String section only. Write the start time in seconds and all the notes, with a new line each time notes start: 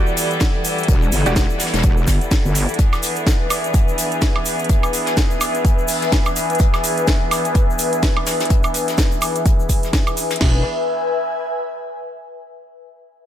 Already playing: E3 G3 B3 E4
2.79 B3 D4 G#4
10.41 E3 B3 D4 G#4